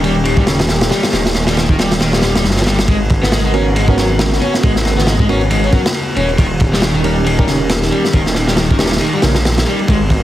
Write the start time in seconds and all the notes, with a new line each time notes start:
Already playing: D#1 D#3 C#4 G4
0.03 G3, ride
0.25 D#3, ride
0.37 G3, kick
0.47 C#3, snare, ride
0.59 snare, ride
0.69 snare, ride
0.81 snare, ride
0.91 G3, snare, ride
1.03 snare, ride
1.13 D#1 D#3, snare, ride
1.26 snare, ride
1.35 snare, ride
1.47 G3, snare, ride
1.57 D#3, snare, ride
1.69 D#3, kick
1.79 G3, snare, ride
1.92 snare, ride
2.00 D#1 D#3, snare, ride
2.13 G3, snare, ride
2.22 G3, snare, ride
2.35 G3, snare, ride
2.44 G1, snare, ride
2.50 snare, ride
2.57 snare, ride
2.62 snare, ride
2.66 G3, snare, ride
2.79 snare, ride
2.88 G#1 C#3 G#3 B3 F#4 A#4, kick, ride
3.10 kick, ride
3.23 B3, snare
3.32 G#3, snare, ride
3.45 G#3, ride
3.54 B3 C#4 F#4 A#4, ride
3.76 G#3, ride
3.88 B3 C#4 F#4 A#4, kick
3.98 F#3, snare, ride
4.19 snare, ride
4.32 snare
4.41 C#4, ride
4.54 snare
4.63 G#1 G#3, kick, ride
4.76 snare
4.85 snare, ride
4.97 B3, snare
5.07 G#3, snare, ride
5.19 G#3, kick
5.29 B3 C#4 F#4 A#4, ride
5.41 ride
5.51 G#1 G#3, ride
5.63 C#4, ride
5.73 F#3 B3 C#4 F#4 A#4, kick, ride
5.86 snare
5.94 ride
6.16 D#1 C#4, ride
6.29 ride
6.38 D#1 D#3 C#4 G4, kick, ride
6.60 kick, ride
6.73 G3, snare
6.82 D#3, snare, ride
6.95 D#3, ride
7.04 G3 C#4 D#4 G4 A#4, ride
7.26 D#3, ride
7.39 G3 C#4 D#4 G4 A#4, kick
7.47 C#3, snare, ride
7.70 snare, ride
7.82 snare
7.92 G3, ride
8.05 snare
8.13 D#1 D#3 D#4, kick, ride
8.26 snare
8.35 snare, ride
8.48 G3, snare
8.57 D#3, snare, ride
8.70 D#3, kick
8.79 G3 C#4 D#4 G4 A#4, snare, ride
8.86 snare, ride
8.91 snare, ride
8.97 snare, ride
9.01 D#3, ride
9.13 G3, ride
9.22 A#1 C#3 C#4 D#4 G4 A#4, snare, ride
9.35 snare, ride
9.45 snare, ride
9.58 snare, ride
9.66 G3, ride
9.79 ride
9.88 G#1 C#3 G#3 B3 F#4 A#4, kick, ride
10.10 kick, ride